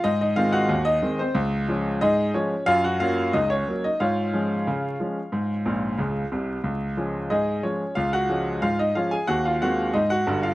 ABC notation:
X:1
M:2/4
L:1/16
Q:1/4=91
K:Db
V:1 name="Grand piano"
[Ee] [Ee] [Ff] [Gg]2 [Ee]2 [Cc] | z4 [EAe]2 [Dd]2 | [Ff] [Gg] [Ff]2 [Ee] [Dd]2 [Ee] | [Fdf]8- |
[Fdf]6 z2 | z4 [EAe]2 [Dd]2 | [Ff] [Gg]3 [Ff] [Ee] [Ff] [Aa] | [Gg] [Ff] [Gg]2 [Ee] [Gg]2 [Ff] |]
V:2 name="Grand piano" clef=bass
A,,2 [E,A,C]2 E,,2 [E,A,C]2 | D,,2 [F,A,D]2 A,,2 [F,A,]2 | G,,2 [G,B,D]2 D,,2 [G,B,]2 | A,,2 [F,A,D]2 D,2 [F,A,D]2 |
A,,2 [B,,,B,,]2 [D,,D,]2 [C,,C,]2 | D,,2 [F,A,D]2 A,,2 [F,A,]2 | D,,2 [F,A,D]2 A,,2 [F,A,D]2 | E,,2 [E,A,C]2 A,,2 [=G,,,=G,,]2 |]